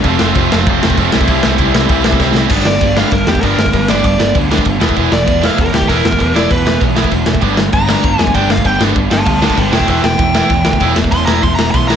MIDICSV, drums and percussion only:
0, 0, Header, 1, 2, 480
1, 0, Start_track
1, 0, Key_signature, 1, "major"
1, 0, Tempo, 307850
1, 81, Time_signature, 4, 2, 24, 8
1, 18648, End_track
2, 0, Start_track
2, 0, Title_t, "Drums"
2, 59, Note_on_c, 9, 49, 59
2, 68, Note_on_c, 9, 36, 100
2, 215, Note_off_c, 9, 49, 0
2, 224, Note_off_c, 9, 36, 0
2, 299, Note_on_c, 9, 38, 102
2, 455, Note_off_c, 9, 38, 0
2, 543, Note_on_c, 9, 49, 55
2, 554, Note_on_c, 9, 36, 102
2, 699, Note_off_c, 9, 49, 0
2, 710, Note_off_c, 9, 36, 0
2, 810, Note_on_c, 9, 38, 111
2, 966, Note_off_c, 9, 38, 0
2, 1035, Note_on_c, 9, 49, 56
2, 1042, Note_on_c, 9, 36, 114
2, 1191, Note_off_c, 9, 49, 0
2, 1198, Note_off_c, 9, 36, 0
2, 1293, Note_on_c, 9, 38, 116
2, 1402, Note_on_c, 9, 36, 96
2, 1448, Note_off_c, 9, 38, 0
2, 1517, Note_on_c, 9, 49, 63
2, 1520, Note_off_c, 9, 36, 0
2, 1520, Note_on_c, 9, 36, 103
2, 1673, Note_off_c, 9, 49, 0
2, 1676, Note_off_c, 9, 36, 0
2, 1751, Note_on_c, 9, 38, 113
2, 1881, Note_on_c, 9, 36, 94
2, 1907, Note_off_c, 9, 38, 0
2, 1988, Note_on_c, 9, 49, 64
2, 2000, Note_off_c, 9, 36, 0
2, 2000, Note_on_c, 9, 36, 94
2, 2144, Note_off_c, 9, 49, 0
2, 2155, Note_off_c, 9, 36, 0
2, 2229, Note_on_c, 9, 38, 106
2, 2385, Note_off_c, 9, 38, 0
2, 2464, Note_on_c, 9, 49, 61
2, 2478, Note_on_c, 9, 36, 105
2, 2620, Note_off_c, 9, 49, 0
2, 2634, Note_off_c, 9, 36, 0
2, 2721, Note_on_c, 9, 38, 111
2, 2877, Note_off_c, 9, 38, 0
2, 2947, Note_on_c, 9, 49, 64
2, 2955, Note_on_c, 9, 36, 96
2, 3103, Note_off_c, 9, 49, 0
2, 3111, Note_off_c, 9, 36, 0
2, 3185, Note_on_c, 9, 38, 110
2, 3312, Note_on_c, 9, 36, 93
2, 3341, Note_off_c, 9, 38, 0
2, 3426, Note_on_c, 9, 38, 75
2, 3429, Note_off_c, 9, 36, 0
2, 3429, Note_on_c, 9, 36, 103
2, 3582, Note_off_c, 9, 38, 0
2, 3585, Note_off_c, 9, 36, 0
2, 3660, Note_on_c, 9, 38, 103
2, 3816, Note_off_c, 9, 38, 0
2, 3890, Note_on_c, 9, 49, 59
2, 3890, Note_on_c, 9, 57, 115
2, 3905, Note_on_c, 9, 36, 113
2, 4046, Note_off_c, 9, 49, 0
2, 4046, Note_off_c, 9, 57, 0
2, 4060, Note_off_c, 9, 36, 0
2, 4135, Note_on_c, 9, 38, 104
2, 4291, Note_off_c, 9, 38, 0
2, 4378, Note_on_c, 9, 49, 50
2, 4385, Note_on_c, 9, 36, 101
2, 4534, Note_off_c, 9, 49, 0
2, 4541, Note_off_c, 9, 36, 0
2, 4624, Note_on_c, 9, 38, 111
2, 4780, Note_off_c, 9, 38, 0
2, 4850, Note_on_c, 9, 49, 53
2, 4864, Note_on_c, 9, 36, 96
2, 5006, Note_off_c, 9, 49, 0
2, 5020, Note_off_c, 9, 36, 0
2, 5099, Note_on_c, 9, 38, 112
2, 5225, Note_on_c, 9, 36, 91
2, 5255, Note_off_c, 9, 38, 0
2, 5347, Note_off_c, 9, 36, 0
2, 5347, Note_on_c, 9, 36, 99
2, 5347, Note_on_c, 9, 49, 59
2, 5503, Note_off_c, 9, 36, 0
2, 5503, Note_off_c, 9, 49, 0
2, 5590, Note_on_c, 9, 38, 109
2, 5708, Note_on_c, 9, 36, 89
2, 5746, Note_off_c, 9, 38, 0
2, 5819, Note_on_c, 9, 49, 60
2, 5824, Note_off_c, 9, 36, 0
2, 5824, Note_on_c, 9, 36, 85
2, 5975, Note_off_c, 9, 49, 0
2, 5980, Note_off_c, 9, 36, 0
2, 6056, Note_on_c, 9, 38, 113
2, 6212, Note_off_c, 9, 38, 0
2, 6297, Note_on_c, 9, 49, 61
2, 6305, Note_on_c, 9, 36, 91
2, 6452, Note_off_c, 9, 49, 0
2, 6461, Note_off_c, 9, 36, 0
2, 6546, Note_on_c, 9, 38, 107
2, 6702, Note_off_c, 9, 38, 0
2, 6780, Note_on_c, 9, 49, 59
2, 6786, Note_on_c, 9, 36, 105
2, 6936, Note_off_c, 9, 49, 0
2, 6942, Note_off_c, 9, 36, 0
2, 7040, Note_on_c, 9, 38, 109
2, 7146, Note_on_c, 9, 36, 90
2, 7196, Note_off_c, 9, 38, 0
2, 7251, Note_on_c, 9, 49, 64
2, 7264, Note_off_c, 9, 36, 0
2, 7264, Note_on_c, 9, 36, 99
2, 7407, Note_off_c, 9, 49, 0
2, 7420, Note_off_c, 9, 36, 0
2, 7506, Note_on_c, 9, 38, 118
2, 7624, Note_on_c, 9, 36, 88
2, 7662, Note_off_c, 9, 38, 0
2, 7738, Note_on_c, 9, 49, 55
2, 7744, Note_off_c, 9, 36, 0
2, 7744, Note_on_c, 9, 36, 84
2, 7894, Note_off_c, 9, 49, 0
2, 7900, Note_off_c, 9, 36, 0
2, 7982, Note_on_c, 9, 38, 112
2, 8137, Note_off_c, 9, 38, 0
2, 8224, Note_on_c, 9, 49, 56
2, 8226, Note_on_c, 9, 36, 99
2, 8379, Note_off_c, 9, 49, 0
2, 8382, Note_off_c, 9, 36, 0
2, 8475, Note_on_c, 9, 38, 101
2, 8631, Note_off_c, 9, 38, 0
2, 8705, Note_on_c, 9, 49, 53
2, 8707, Note_on_c, 9, 36, 99
2, 8861, Note_off_c, 9, 49, 0
2, 8863, Note_off_c, 9, 36, 0
2, 8950, Note_on_c, 9, 38, 116
2, 9069, Note_on_c, 9, 36, 87
2, 9106, Note_off_c, 9, 38, 0
2, 9189, Note_off_c, 9, 36, 0
2, 9189, Note_on_c, 9, 36, 100
2, 9194, Note_on_c, 9, 49, 67
2, 9345, Note_off_c, 9, 36, 0
2, 9350, Note_off_c, 9, 49, 0
2, 9436, Note_on_c, 9, 38, 107
2, 9550, Note_on_c, 9, 36, 88
2, 9592, Note_off_c, 9, 38, 0
2, 9671, Note_off_c, 9, 36, 0
2, 9671, Note_on_c, 9, 36, 97
2, 9678, Note_on_c, 9, 49, 59
2, 9827, Note_off_c, 9, 36, 0
2, 9834, Note_off_c, 9, 49, 0
2, 9922, Note_on_c, 9, 38, 109
2, 10077, Note_off_c, 9, 38, 0
2, 10146, Note_on_c, 9, 49, 60
2, 10147, Note_on_c, 9, 36, 105
2, 10302, Note_off_c, 9, 49, 0
2, 10303, Note_off_c, 9, 36, 0
2, 10396, Note_on_c, 9, 38, 111
2, 10552, Note_off_c, 9, 38, 0
2, 10620, Note_on_c, 9, 49, 54
2, 10625, Note_on_c, 9, 36, 103
2, 10775, Note_off_c, 9, 49, 0
2, 10781, Note_off_c, 9, 36, 0
2, 10860, Note_on_c, 9, 38, 111
2, 10981, Note_on_c, 9, 36, 93
2, 11016, Note_off_c, 9, 38, 0
2, 11091, Note_on_c, 9, 49, 60
2, 11099, Note_off_c, 9, 36, 0
2, 11099, Note_on_c, 9, 36, 95
2, 11247, Note_off_c, 9, 49, 0
2, 11255, Note_off_c, 9, 36, 0
2, 11322, Note_on_c, 9, 38, 111
2, 11454, Note_on_c, 9, 36, 88
2, 11478, Note_off_c, 9, 38, 0
2, 11559, Note_on_c, 9, 49, 57
2, 11573, Note_off_c, 9, 36, 0
2, 11573, Note_on_c, 9, 36, 98
2, 11715, Note_off_c, 9, 49, 0
2, 11729, Note_off_c, 9, 36, 0
2, 11808, Note_on_c, 9, 38, 112
2, 11964, Note_off_c, 9, 38, 0
2, 12042, Note_on_c, 9, 49, 56
2, 12054, Note_on_c, 9, 36, 96
2, 12198, Note_off_c, 9, 49, 0
2, 12210, Note_off_c, 9, 36, 0
2, 12296, Note_on_c, 9, 38, 110
2, 12452, Note_off_c, 9, 38, 0
2, 12535, Note_on_c, 9, 36, 106
2, 12535, Note_on_c, 9, 49, 55
2, 12690, Note_off_c, 9, 49, 0
2, 12691, Note_off_c, 9, 36, 0
2, 12774, Note_on_c, 9, 38, 109
2, 12895, Note_on_c, 9, 36, 90
2, 12930, Note_off_c, 9, 38, 0
2, 13016, Note_off_c, 9, 36, 0
2, 13016, Note_on_c, 9, 36, 100
2, 13019, Note_on_c, 9, 49, 58
2, 13172, Note_off_c, 9, 36, 0
2, 13175, Note_off_c, 9, 49, 0
2, 13256, Note_on_c, 9, 38, 114
2, 13369, Note_on_c, 9, 36, 85
2, 13411, Note_off_c, 9, 38, 0
2, 13483, Note_on_c, 9, 49, 55
2, 13488, Note_off_c, 9, 36, 0
2, 13488, Note_on_c, 9, 36, 96
2, 13638, Note_off_c, 9, 49, 0
2, 13644, Note_off_c, 9, 36, 0
2, 13731, Note_on_c, 9, 38, 114
2, 13887, Note_off_c, 9, 38, 0
2, 13964, Note_on_c, 9, 49, 48
2, 13969, Note_on_c, 9, 36, 104
2, 14120, Note_off_c, 9, 49, 0
2, 14125, Note_off_c, 9, 36, 0
2, 14208, Note_on_c, 9, 38, 115
2, 14364, Note_off_c, 9, 38, 0
2, 14443, Note_on_c, 9, 49, 56
2, 14446, Note_on_c, 9, 36, 107
2, 14599, Note_off_c, 9, 49, 0
2, 14602, Note_off_c, 9, 36, 0
2, 14691, Note_on_c, 9, 38, 109
2, 14810, Note_on_c, 9, 36, 89
2, 14847, Note_off_c, 9, 38, 0
2, 14930, Note_off_c, 9, 36, 0
2, 14930, Note_on_c, 9, 36, 100
2, 14940, Note_on_c, 9, 49, 66
2, 15086, Note_off_c, 9, 36, 0
2, 15096, Note_off_c, 9, 49, 0
2, 15168, Note_on_c, 9, 38, 110
2, 15284, Note_on_c, 9, 36, 86
2, 15324, Note_off_c, 9, 38, 0
2, 15404, Note_on_c, 9, 49, 58
2, 15407, Note_off_c, 9, 36, 0
2, 15407, Note_on_c, 9, 36, 88
2, 15560, Note_off_c, 9, 49, 0
2, 15563, Note_off_c, 9, 36, 0
2, 15653, Note_on_c, 9, 38, 117
2, 15809, Note_off_c, 9, 38, 0
2, 15890, Note_on_c, 9, 36, 94
2, 15892, Note_on_c, 9, 49, 49
2, 16046, Note_off_c, 9, 36, 0
2, 16048, Note_off_c, 9, 49, 0
2, 16133, Note_on_c, 9, 38, 110
2, 16289, Note_off_c, 9, 38, 0
2, 16364, Note_on_c, 9, 49, 51
2, 16372, Note_on_c, 9, 36, 103
2, 16520, Note_off_c, 9, 49, 0
2, 16528, Note_off_c, 9, 36, 0
2, 16601, Note_on_c, 9, 38, 117
2, 16732, Note_on_c, 9, 36, 93
2, 16757, Note_off_c, 9, 38, 0
2, 16841, Note_on_c, 9, 49, 63
2, 16853, Note_off_c, 9, 36, 0
2, 16853, Note_on_c, 9, 36, 101
2, 16997, Note_off_c, 9, 49, 0
2, 17009, Note_off_c, 9, 36, 0
2, 17091, Note_on_c, 9, 38, 116
2, 17217, Note_on_c, 9, 36, 80
2, 17247, Note_off_c, 9, 38, 0
2, 17335, Note_on_c, 9, 49, 62
2, 17341, Note_off_c, 9, 36, 0
2, 17341, Note_on_c, 9, 36, 98
2, 17491, Note_off_c, 9, 49, 0
2, 17497, Note_off_c, 9, 36, 0
2, 17580, Note_on_c, 9, 38, 114
2, 17736, Note_off_c, 9, 38, 0
2, 17823, Note_on_c, 9, 36, 99
2, 17824, Note_on_c, 9, 49, 47
2, 17979, Note_off_c, 9, 36, 0
2, 17980, Note_off_c, 9, 49, 0
2, 18066, Note_on_c, 9, 38, 111
2, 18222, Note_off_c, 9, 38, 0
2, 18308, Note_on_c, 9, 36, 115
2, 18317, Note_on_c, 9, 49, 53
2, 18464, Note_off_c, 9, 36, 0
2, 18472, Note_off_c, 9, 49, 0
2, 18555, Note_on_c, 9, 38, 101
2, 18648, Note_off_c, 9, 38, 0
2, 18648, End_track
0, 0, End_of_file